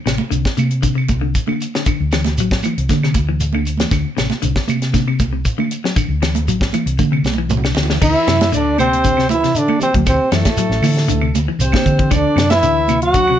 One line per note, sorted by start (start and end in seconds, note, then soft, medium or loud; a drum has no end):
0.06 0.18 A1 medium
0.06 0.24 C3 medium
0.06 snare medium
0.06 closed hi-hat soft
0.06 claves medium
0.06 shekere soft
0.18 high conga medium
0.30 0.44 C2 medium
0.30 0.49 D3 medium
0.30 closed hi-hat medium
0.30 shekere medium
0.45 kick medium
0.45 snare medium
0.57 0.75 C3 medium
0.57 1.11 C3 medium
0.57 closed hi-hat soft
0.57 high conga medium
0.57 claves medium
0.57 shekere soft
0.71 closed hi-hat soft
0.82 0.92 D3 medium
0.82 kick medium
0.82 closed hi-hat medium
0.82 shekere medium
0.95 1.14 C3 medium
0.95 claves medium
1.08 1.32 C2 medium
1.08 kick medium
1.08 closed hi-hat soft
1.08 high conga medium
1.08 shekere soft
1.21 1.40 D3 medium
1.35 kick medium
1.35 closed hi-hat medium
1.35 shekere medium
1.47 1.66 D3 medium
1.47 high conga medium
1.47 claves medium
1.61 closed hi-hat soft
1.61 shekere soft
1.75 1.84 D3 medium
1.75 snare medium
1.86 2.05 D3 medium
1.86 kick medium
1.86 closed hi-hat medium
1.86 claves medium
1.86 shekere medium
2.00 2.39 D2 medium
2.11 2.30 E3 medium
2.11 snare medium
2.11 closed hi-hat soft
2.11 claves medium
2.11 shekere soft
2.24 snare soft
2.24 closed hi-hat medium
2.24 high conga medium
2.38 2.61 A1 medium
2.38 2.57 F#3 medium
2.38 closed hi-hat medium
2.38 shekere medium
2.51 kick medium
2.51 snare medium
2.63 2.83 E3 medium
2.63 closed hi-hat soft
2.63 high conga medium
2.63 claves medium
2.63 shekere soft
2.78 2.88 C2 medium
2.78 closed hi-hat soft
2.89 3.12 D3 medium
2.89 2.99 D3 medium
2.89 kick medium
2.89 snare soft
2.89 closed hi-hat medium
2.89 high conga medium
2.89 shekere medium
3.03 3.21 C3 medium
3.03 snare soft
3.03 claves medium
3.14 3.84 D2 medium
3.14 kick medium
3.14 closed hi-hat soft
3.14 high conga medium
3.14 shekere soft
3.29 3.46 E3 medium
3.40 closed hi-hat medium
3.40 shekere medium
3.53 3.72 D3 medium
3.53 high conga medium
3.53 claves medium
3.66 closed hi-hat soft
3.66 shekere soft
3.77 3.89 E3 medium
3.77 snare medium
3.77 closed hi-hat soft
3.77 high conga medium
3.91 4.03 D2 medium
3.91 4.09 D3 medium
3.91 kick medium
3.91 snare soft
3.91 closed hi-hat medium
3.91 claves medium
3.91 shekere medium
4.17 4.29 A1 medium
4.17 4.35 C3 medium
4.17 snare medium
4.17 closed hi-hat soft
4.17 claves medium
4.17 shekere soft
4.30 snare soft
4.30 high conga medium
4.42 4.55 C2 medium
4.42 4.60 D3 medium
4.42 closed hi-hat medium
4.42 shekere medium
4.56 kick medium
4.56 snare medium
4.68 4.86 C3 medium
4.68 5.21 C3 medium
4.68 closed hi-hat soft
4.68 high conga medium
4.68 claves medium
4.68 shekere soft
4.82 snare soft
4.82 closed hi-hat soft
4.93 5.03 D3 medium
4.93 kick medium
4.93 snare soft
4.93 closed hi-hat medium
4.93 high conga medium
4.93 shekere medium
5.08 5.25 C3 medium
5.08 claves medium
5.19 5.43 C2 medium
5.19 kick medium
5.19 closed hi-hat medium
5.19 high conga medium
5.19 shekere soft
5.33 5.51 C3 medium
5.45 kick medium
5.45 closed hi-hat medium
5.45 shekere medium
5.58 5.76 D3 medium
5.58 high conga medium
5.58 claves medium
5.71 closed hi-hat soft
5.71 shekere soft
5.84 5.93 F#3 medium
5.84 snare medium
5.96 6.14 D3 medium
5.96 kick medium
5.96 closed hi-hat medium
5.96 claves medium
5.96 shekere medium
6.08 6.48 D2 medium
6.22 6.40 E3 medium
6.22 snare medium
6.22 closed hi-hat medium
6.22 claves medium
6.22 shekere soft
6.35 closed hi-hat medium
6.35 high conga loud
6.48 6.71 A1 medium
6.48 6.66 F#3 medium
6.48 closed hi-hat medium
6.48 shekere medium
6.61 kick medium
6.61 snare medium
6.73 6.92 E3 medium
6.73 closed hi-hat medium
6.73 high conga medium
6.73 claves medium
6.73 shekere soft
6.86 6.97 C2 medium
6.86 closed hi-hat medium
6.99 7.08 D3 medium
6.99 7.22 D3 medium
6.99 kick medium
6.99 high tom soft
6.99 high conga medium
6.99 shekere medium
7.12 7.30 C3 medium
7.12 claves medium
7.23 7.47 B1 medium
7.23 snare medium
7.23 high conga medium
7.23 shekere soft
7.33 high conga medium
7.38 7.56 E3 medium
7.49 7.73 C2 medium
7.49 mid tom medium
7.49 high conga medium
7.49 shekere medium
7.57 low conga medium
7.64 7.82 D3 medium
7.64 snare medium
7.64 claves medium
7.75 7.99 D2 medium
7.75 snare medium
7.75 low conga medium
7.75 shekere soft
7.83 low conga medium
7.90 7.99 E3 medium
7.90 snare medium
7.90 low conga medium
8.01 8.14 D2 medium
8.01 8.19 D3 medium
8.01 8.50 E3 medium
8.01 8.50 E4 loud
8.01 8.50 E5 medium
8.01 kick medium
8.01 crash medium
8.01 low conga medium
8.01 claves medium
8.01 shekere medium
8.27 8.53 F#2 medium
8.27 8.45 C3 medium
8.27 snare medium
8.27 closed hi-hat medium
8.27 claves medium
8.27 shekere soft
8.41 snare medium
8.41 closed hi-hat medium
8.41 high conga medium
8.52 9.45 D2 medium
8.52 8.70 D3 medium
8.52 8.77 D3 medium
8.52 8.78 D4 medium
8.52 8.78 D5 medium
8.52 closed hi-hat medium
8.52 shekere medium
8.78 9.26 C3 medium
8.78 8.96 C3 medium
8.78 9.27 C4 loud
8.78 9.26 C5 medium
8.78 closed hi-hat soft
8.78 high conga medium
8.78 claves medium
8.78 shekere soft
8.93 closed hi-hat medium
9.04 9.14 D3 medium
9.04 kick medium
9.04 closed hi-hat medium
9.04 shekere medium
9.17 9.36 C3 medium
9.17 snare soft
9.17 claves medium
9.29 9.56 E3 medium
9.29 9.59 E4 medium
9.29 9.60 E5 medium
9.29 closed hi-hat medium
9.29 high conga medium
9.29 shekere soft
9.44 9.61 C3 medium
9.44 snare soft
9.44 closed hi-hat soft
9.54 9.78 D3 medium
9.54 9.82 D4 medium
9.54 closed hi-hat medium
9.54 shekere medium
9.59 9.83 D5 medium
9.68 9.87 D3 medium
9.68 high conga medium
9.68 claves medium
9.79 9.91 C3 medium
9.79 9.94 C4 medium
9.79 closed hi-hat medium
9.79 low conga medium
9.79 shekere soft
9.84 9.95 C5 medium
9.94 10.17 D2 medium
9.94 10.03 F#3 medium
9.94 kick medium
9.94 closed hi-hat medium
9.94 high conga medium
10.03 10.28 C3 medium
10.03 kick medium
10.03 closed hi-hat medium
10.03 claves medium
10.03 shekere medium
10.07 10.31 C4 medium
10.07 10.31 C5 medium
10.07 muted clean electric guitar stroke medium
10.07 low conga medium
10.32 10.44 F#2 medium
10.32 11.31 A2 medium
10.32 10.50 E3 medium
10.32 11.31 A3 medium
10.32 11.32 A4 medium
10.32 snare medium
10.32 closed hi-hat medium
10.32 claves medium
10.32 shekere soft
10.45 kick medium
10.45 snare medium
10.45 closed hi-hat medium
10.45 high conga medium
10.57 10.76 F#3 medium
10.57 muted fingered electric bass stroke soft
10.57 closed hi-hat medium
10.57 shekere medium
10.70 10.81 A1 medium
10.70 snare soft
10.82 11.09 D3 medium
10.82 11.01 E3 medium
10.82 open hi-hat medium
10.82 high conga medium
10.82 claves medium
10.82 shekere soft
10.97 snare soft
11.08 11.31 D2 medium
11.08 11.18 D3 medium
11.08 closed hi-hat medium
11.08 shekere medium
11.21 11.40 C3 medium
11.21 claves medium
11.34 11.46 D2 medium
11.34 closed hi-hat medium
11.34 high conga medium
11.34 shekere soft
11.48 11.66 E3 medium
11.59 11.71 C2 medium
11.59 12.14 C3 medium
11.59 12.16 C4 medium
11.59 12.12 C5 medium
11.59 closed hi-hat medium
11.59 shekere medium
11.72 11.91 D3 medium
11.72 kick medium
11.72 snare medium
11.72 high conga medium
11.72 claves medium
11.86 12.09 D3 loud
11.86 kick medium
11.86 closed hi-hat soft
11.86 low conga medium
11.86 shekere soft
11.99 12.08 E3 medium
11.99 kick medium
11.99 closed hi-hat soft
12.11 12.23 D2 medium
12.11 12.29 D3 medium
12.11 12.50 D3 medium
12.11 12.51 D4 loud
12.11 12.49 D5 medium
12.11 kick medium
12.11 closed hi-hat medium
12.11 low conga medium
12.11 claves medium
12.11 shekere medium
12.36 12.61 F#2 medium
12.36 12.54 C3 medium
12.36 snare medium
12.36 closed hi-hat medium
12.36 claves medium
12.36 shekere soft
12.50 12.98 E3 medium
12.50 12.99 E4 loud
12.50 12.98 E5 medium
12.50 snare medium
12.50 closed hi-hat soft
12.50 high conga loud
12.61 13.39 D2 medium
12.61 12.81 D3 medium
12.61 closed hi-hat medium
12.61 shekere medium
12.88 13.07 C3 medium
12.88 closed hi-hat medium
12.88 high conga medium
12.88 claves medium
12.88 shekere soft
13.02 13.39 F#3 medium
13.02 13.39 F#4 loud
13.02 13.39 F#5 medium
13.02 closed hi-hat medium
13.14 13.24 D3 medium
13.14 kick medium
13.14 closed hi-hat medium
13.14 shekere medium
13.28 13.39 C3 medium
13.28 claves medium